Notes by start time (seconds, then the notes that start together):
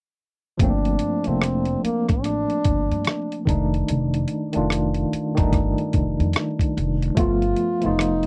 0.57 G1 F3 A3 A#3 D4, kick, closed hi-hat
0.62 C4
0.85 closed hi-hat
0.99 closed hi-hat
1.23 F1 F3 A3 A#3, closed hi-hat
1.28 C4 D4
1.42 cross-stick, closed hi-hat
1.65 closed hi-hat
1.84 A#3, muted upright bass stroke, closed hi-hat
2.08 A1 D4, kick, cross-stick, closed hi-hat
2.24 cross-stick, closed hi-hat
2.50 closed hi-hat
2.65 G1, kick, closed hi-hat
2.91 G2, closed hi-hat
3.05 cross-stick, closed hi-hat
3.32 closed hi-hat
3.45 F1 D#3 G#3 D4, kick, closed hi-hat
3.50 A3 D#4
3.74 closed hi-hat
3.88 F1, closed hi-hat
4.14 closed hi-hat
4.28 closed hi-hat
4.52 F1 D#3 A3 D4, closed hi-hat
4.57 F4
4.70 cross-stick, closed hi-hat
4.94 closed hi-hat
5.13 muted upright bass stroke, closed hi-hat
5.34 D#3 G3 D4, kick, cross-stick, closed hi-hat
5.39 G1 A3 D#4
5.53 kick, cross-stick, closed hi-hat
5.78 closed hi-hat
5.93 F1, kick, closed hi-hat
6.20 F2, closed hi-hat
6.33 cross-stick, closed hi-hat
6.59 kick, closed hi-hat
6.77 F1, closed hi-hat
7.02 closed hi-hat
7.15 G1 F3 A3 B3, kick, closed hi-hat
7.19 F4
7.42 closed hi-hat
7.56 closed hi-hat
7.81 F1 F3 A3 B3, closed hi-hat
7.85 D#4 F4
7.99 cross-stick, closed hi-hat
8.23 closed hi-hat